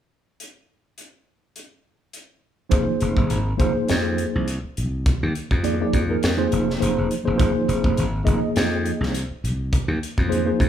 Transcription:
0.40 closed hi-hat
0.98 closed hi-hat
1.56 closed hi-hat
2.13 closed hi-hat
2.69 F1 F3 A#3 D#4 G#4 C5, kick, closed hi-hat
3.00 F1, closed hi-hat
3.17 F1, kick
3.30 G#1, closed hi-hat
3.57 F1 F3 A#3 D#4 G#4 C5, kick, closed hi-hat
3.77 muted slap bass stroke
3.88 F2, snare, closed hi-hat
4.18 closed hi-hat
4.35 C2
4.48 closed hi-hat
4.65 muted slap bass stroke
4.77 C2, closed hi-hat
5.06 kick, closed hi-hat
5.23 D#2
5.35 closed hi-hat
5.51 F2, kick
5.63 F3 A#3 D#4 G#4 D5, closed hi-hat
5.80 F3 A#3 D#4 G#4 D5
5.93 F2, kick, closed hi-hat
6.08 F3 A#3 D#4 G#4 A#4
6.23 F2, snare, closed hi-hat
6.37 F3 A#3 D#4 G#4 C5
6.52 F1, closed hi-hat
6.70 snare
6.79 F1 F3 A#3 D#4 G#4 C5, closed hi-hat
6.98 F1
7.11 closed hi-hat
7.24 F1 F3 A#3 D#4 G#4 C5
7.36 F1 F3 A#3 D#4 G#4 C5, kick
7.40 closed hi-hat
7.68 F1, closed hi-hat
7.84 F1, kick
7.97 G#1, closed hi-hat
8.24 F1 F3 A#3 D#4 G#4 D#5, kick, closed hi-hat
8.56 F2, snare, closed hi-hat
8.86 closed hi-hat
9.01 C2, snare
9.14 closed hi-hat
9.31 muted slap bass stroke
9.44 C2, closed hi-hat
9.73 kick, closed hi-hat
9.88 D#2
10.03 closed hi-hat
10.18 F2, kick
10.28 F3 A#3 D#4 G#4 C5
10.32 closed hi-hat
10.45 F3 A#3 D#4 G#4 C5
10.60 F2, kick, closed hi-hat

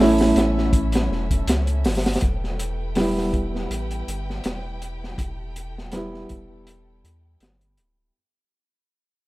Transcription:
Already playing: A1 A3 C#4 E4 A4 E5
0.00 A3 C#4 E4, snare
0.18 snare, open hi-hat
0.36 A1, snare, closed hi-hat
0.58 snare
0.73 kick, closed hi-hat
0.92 snare, closed hi-hat
1.11 E1, snare
1.31 kick, closed hi-hat
1.47 C#2, snare, closed hi-hat
1.67 closed hi-hat
1.84 G1, snare, open hi-hat
1.95 snare, open hi-hat
2.06 snare, open hi-hat
2.13 snare, open hi-hat
2.21 E1 E4 G4 B4 G5, kick, closed hi-hat
2.44 snare
2.59 closed hi-hat
2.95 G3 B3 E4, snare, open hi-hat
3.18 snare
3.33 kick, closed hi-hat
3.55 snare
3.70 A1, closed hi-hat
3.91 closed hi-hat
4.08 G1, closed hi-hat
4.30 snare
4.44 E1, snare, closed hi-hat
4.82 closed hi-hat
5.04 snare
5.18 E1 A4, kick, closed hi-hat
5.56 closed hi-hat
5.78 snare
5.92 G3 B3 E4, snare, closed hi-hat
6.14 snare
6.29 E1, kick, closed hi-hat
6.67 closed hi-hat
7.04 E2, closed hi-hat
7.40 G1, snare, closed hi-hat
7.61 closed hi-hat
7.77 D1, closed hi-hat

